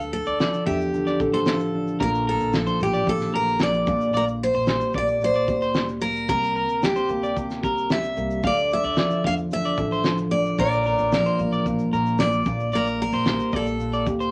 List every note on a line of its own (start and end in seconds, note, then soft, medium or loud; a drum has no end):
0.00 0.23 D2 loud
0.00 0.93 D3 medium
0.00 0.12 A4 medium
0.00 shaker soft
0.13 0.68 A4 medium
0.13 shaker medium
0.26 0.51 D2 medium
0.26 0.39 D5 medium
0.26 shaker medium
0.40 1.47 F3 medium
0.40 0.65 D5 medium
0.40 snare loud
0.40 shaker medium
0.53 shaker medium
0.66 1.16 E2 medium
0.66 1.74 D4 medium
0.66 1.29 G4 medium
0.66 0.79 E5 medium
0.66 kick medium
0.81 shaker medium
0.94 4.44 D3 medium
0.94 shaker medium
1.07 1.19 D5 medium
1.07 snare soft
1.07 shaker soft
1.20 1.96 A1 medium
1.20 2.06 A4 medium
1.20 kick loud
1.20 shaker medium
1.33 1.39 A4 medium
1.33 1.59 C5 medium
1.33 shaker soft
1.46 2.06 F3 medium
1.46 1.97 A4 medium
1.46 snare loud
1.46 shaker medium
1.60 shaker medium
1.74 2.79 D4 medium
1.87 shaker medium
2.00 2.37 A#1 loud
2.00 3.05 A#2 medium
2.00 2.25 A#4 loud
2.00 2.09 A#4 loud
2.00 kick loud
2.00 shaker medium
2.15 shaker medium
2.27 2.83 A4 loud
2.27 2.52 A#4 medium
2.40 2.65 A#1 medium
2.40 shaker medium
2.53 3.58 F3 medium
2.53 snare loud
2.53 shaker medium
2.67 2.80 C5 medium
2.67 shaker medium
2.80 3.30 A1 medium
2.80 4.94 A#3 medium
2.80 3.09 G4 medium
2.80 shaker soft
2.94 3.06 D5 medium
2.94 shaker medium
3.07 3.85 A#2 medium
3.07 3.35 A4 loud
3.07 kick medium
3.07 shaker medium
3.21 snare soft
3.21 shaker soft
3.33 3.84 A#1 medium
3.33 5.49 A#4 medium
3.33 3.59 A#4 medium
3.33 3.62 A#4 loud
3.47 shaker soft
3.59 3.92 F3 medium
3.59 4.12 D5 loud
3.59 snare loud
3.59 shaker medium
3.74 shaker medium
3.87 4.50 A#1 medium
3.87 4.12 A#2 medium
3.87 kick loud
3.87 shaker medium
4.01 shaker soft
4.13 5.21 A#2 medium
4.13 4.24 A#4 loud
4.13 4.27 D5 loud
4.13 shaker medium
4.28 shaker medium
4.43 4.92 C5 medium
4.54 4.79 A#1 medium
4.54 4.67 C5 medium
4.54 shaker medium
4.67 5.75 G3 medium
4.67 4.93 C5 medium
4.67 snare loud
4.67 shaker medium
4.81 shaker medium
4.93 5.44 A#1 medium
4.93 6.02 A#3 medium
4.93 5.08 D5 medium
4.93 kick loud
4.93 shaker soft
4.98 5.24 D5 loud
5.08 shaker medium
5.21 6.35 A#2 medium
5.21 5.73 C5 loud
5.21 shaker medium
5.34 5.48 D5 medium
5.34 shaker medium
5.48 6.25 D2 medium
5.48 7.63 G4 medium
5.48 kick loud
5.48 shaker medium
5.62 5.87 C5 medium
5.62 shaker soft
5.74 6.82 G3 medium
5.74 snare loud
5.74 shaker medium
5.88 shaker medium
6.01 7.09 A#3 medium
6.01 6.28 A#4 loud
6.01 shaker medium
6.16 shaker soft
6.28 6.68 C2 loud
6.28 7.35 C3 medium
6.28 6.55 A#4 loud
6.28 6.84 A#4 loud
6.28 kick loud
6.28 shaker medium
6.43 shaker medium
6.56 6.81 A#4 medium
6.68 6.94 D2 medium
6.68 shaker medium
6.82 7.89 G3 medium
6.82 7.60 G4 medium
6.82 snare loud
6.82 shaker medium
6.96 7.09 C5 medium
6.96 shaker medium
7.09 7.63 D2 medium
7.09 8.16 A#3 medium
7.09 shaker soft
7.23 7.36 D5 medium
7.23 shaker medium
7.36 8.44 C3 medium
7.36 kick medium
7.36 shaker medium
7.50 snare soft
7.50 shaker medium
7.63 8.13 C2 loud
7.63 8.49 G4 medium
7.63 7.89 A#4 medium
7.63 kick loud
7.63 shaker medium
7.78 shaker soft
7.90 8.49 G3 medium
7.90 8.46 E5 medium
7.90 snare loud
7.90 shaker medium
8.04 shaker medium
8.17 8.42 C2 medium
8.17 8.49 A#3 medium
8.17 shaker medium
8.30 shaker soft
8.43 8.81 D2 loud
8.43 9.51 D3 medium
8.43 8.70 D5 medium
8.43 8.57 F5 medium
8.43 kick loud
8.43 shaker medium
8.58 shaker medium
8.71 9.26 E5 loud
8.71 shaker medium
8.83 9.09 D2 medium
8.83 8.97 D5 medium
8.83 shaker medium
8.96 10.05 F3 medium
8.96 9.25 D5 medium
8.96 snare loud
8.96 shaker medium
9.10 shaker medium
9.24 9.74 E2 medium
9.24 10.32 D4 medium
9.24 9.37 E5 medium
9.24 9.33 F5 loud
9.24 kick medium
9.37 shaker medium
9.51 13.02 D3 medium
9.51 10.02 E5 loud
9.51 shaker medium
9.64 9.78 D5 medium
9.64 shaker soft
9.78 10.55 A1 medium
9.78 10.64 A4 medium
9.78 kick loud
9.78 shaker medium
9.91 10.17 C5 medium
9.91 shaker soft
10.04 10.64 F3 medium
10.04 snare loud
10.04 shaker medium
10.18 shaker medium
10.31 11.39 D4 medium
10.31 10.56 D5 loud
10.46 shaker medium
10.58 10.96 A#1 loud
10.58 11.66 A#2 medium
10.58 10.84 A#4 loud
10.58 11.13 D5 loud
10.58 kick loud
10.58 shaker medium
10.73 shaker medium
10.86 11.11 A#4 medium
10.86 shaker medium
10.98 11.24 A#1 medium
10.98 shaker medium
11.12 12.19 F3 medium
11.12 11.89 A#4 medium
11.12 snare loud
11.12 shaker medium
11.26 11.39 C5 medium
11.26 shaker medium
11.39 11.89 A1 medium
11.39 13.53 A#3 medium
11.39 shaker medium
11.52 11.65 D5 medium
11.52 shaker medium
11.66 12.45 A#2 medium
11.66 kick medium
11.66 shaker medium
11.79 shaker soft
11.93 12.42 A#1 medium
11.93 12.18 A#4 medium
11.93 14.07 A#4 medium
11.93 shaker medium
12.06 shaker soft
12.18 12.52 F3 medium
12.18 12.75 D5 loud
12.18 snare loud
12.18 shaker medium
12.32 shaker medium
12.45 13.09 A#1 loud
12.45 12.72 A#2 medium
12.45 kick loud
12.45 shaker medium
12.60 shaker soft
12.72 13.79 A#2 medium
12.72 13.01 A#4 medium
12.72 12.86 D5 medium
12.72 shaker medium
12.87 shaker medium
13.02 13.56 A#4 medium
13.12 13.38 A#1 medium
13.12 13.25 C5 medium
13.12 shaker medium
13.25 14.31 G3 medium
13.25 13.53 C5 medium
13.25 snare loud
13.25 shaker medium
13.39 shaker medium
13.52 14.03 A#1 medium
13.52 14.31 A#3 medium
13.52 13.66 D5 medium
13.52 kick medium
13.52 shaker soft
13.56 14.05 A4 medium
13.67 shaker medium
13.80 14.31 A#2 medium
13.80 shaker medium
13.93 14.06 D5 medium
13.93 shaker soft
14.06 14.31 D2 medium
14.06 14.31 G4 medium
14.06 kick loud
14.06 shaker medium
14.20 14.31 C5 medium
14.20 shaker soft